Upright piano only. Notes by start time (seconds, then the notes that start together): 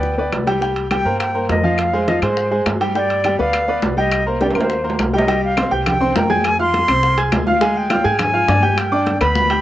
Already playing: B3 B4 D5
0.18 B3 B4 D5
0.47 G3 G4 G5
0.61 G3 G4 G5
0.91 G3 G4 G5
1.05 A#3 A#4 C5
1.34 A#3 A#4 C5
1.63 F3 F4 F5
1.93 G#3 G#4 C5
2.08 F3 F4 F5
2.23 G#3 G#4 C5
2.51 G#3 G#4 C5
2.81 G3 G4 G5
2.95 G3 G4 G5
3.25 G3 G4 G5
3.39 B3 B4 D5
3.68 B3 B4 D5
3.97 G3 G4 G5
4.26 A#3 A#4 C5
4.41 G3 G4 G5
4.55 A#3 A#4 C5
4.84 A#3 A#4 C5
5.13 G3 G4 G5
5.28 G3 G4 G5
5.57 C4 C5 C6
5.71 G4 G5 G6
6.00 C4 C5 C6
6.15 A#3 A#4 A#5
6.30 G#4 G#5 G#6
6.59 F4 F5 F6
6.88 C4 C5 C6
7.17 G#4 G#5 G#6
7.47 F4 F5 F6
7.61 G#3 G#4 G#5
7.90 F4 F5 F6
8.04 G#4 G#5 G#6
8.33 F4 F5 F6
8.48 D4 D5 D6
8.62 G4 G5 G6
8.92 D4 D5 D6
9.21 B3 B4 B5
9.50 G4 G5 G6